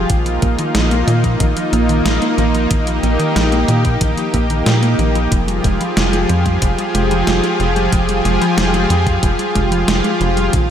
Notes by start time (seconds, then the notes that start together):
Already playing: F4
0.10 A#1 D#3 A#3 D#4, kick, closed hi-hat
0.26 F3, closed hi-hat
0.42 A#1 A#3, kick, closed hi-hat
0.59 D#3, closed hi-hat
0.75 A#1 F3, snare, closed hi-hat
0.91 A#3, closed hi-hat
1.07 A#2 D#3, closed hi-hat
1.24 F3, kick, closed hi-hat
1.40 A#1 D#3, kick, closed hi-hat
1.56 F3, closed hi-hat
1.73 A#1 A#3, closed hi-hat
1.89 D#3, closed hi-hat
2.05 A#1 F3, snare, closed hi-hat
2.22 A#3, closed hi-hat
2.38 A#1 D#3, closed hi-hat
2.54 F3, closed hi-hat
2.71 A#1 D#3 G4, kick, closed hi-hat
2.87 F3, closed hi-hat
3.03 A#1 A#3, closed hi-hat
3.19 D#3, closed hi-hat
3.36 A#1 F3, snare, closed hi-hat
3.52 A#3, closed hi-hat
3.68 A#2 D#3, closed hi-hat
3.85 F3, kick, closed hi-hat
4.01 A#1 D#3, kick, closed hi-hat
4.17 F3, closed hi-hat
4.34 A#1 A#3, kick, closed hi-hat
4.50 D#3, closed hi-hat
4.66 A#2 F3, snare, closed hi-hat
4.82 A#3, closed hi-hat
4.99 A#1 D#3, closed hi-hat
5.15 F3, closed hi-hat
5.31 F1 F3 F4 G4 G#4, kick, closed hi-hat
5.48 G3, closed hi-hat
5.64 F1 G#3, kick, closed hi-hat
5.81 F3, closed hi-hat
5.97 F1 G3, snare, closed hi-hat
6.13 G#3, closed hi-hat
6.29 F2 F3, closed hi-hat
6.46 G3, kick, closed hi-hat
6.62 F1 F3, kick, closed hi-hat
6.79 G3, closed hi-hat
6.95 F1 G#3, closed hi-hat
7.11 F3, closed hi-hat
7.27 F1 G3, snare, closed hi-hat
7.44 G#3, closed hi-hat
7.60 F1 F3, closed hi-hat
7.76 G3, closed hi-hat
7.92 F1 F3, kick, closed hi-hat
8.09 G3, closed hi-hat
8.25 F1 G#3, closed hi-hat
8.42 F3, closed hi-hat
8.58 F1 G3, snare, closed hi-hat
8.74 G#3, closed hi-hat
8.90 F2 F3, closed hi-hat
9.07 G3, kick, closed hi-hat
9.23 F1 F3, kick, closed hi-hat
9.39 G3, closed hi-hat
9.55 F1 G#3, kick, closed hi-hat
9.72 F3, closed hi-hat
9.88 F1 G3, snare, closed hi-hat
10.04 G#3, closed hi-hat
10.21 F1 F3, closed hi-hat
10.37 G3, closed hi-hat
10.53 A#1 D#3 A#3 D#4, kick, closed hi-hat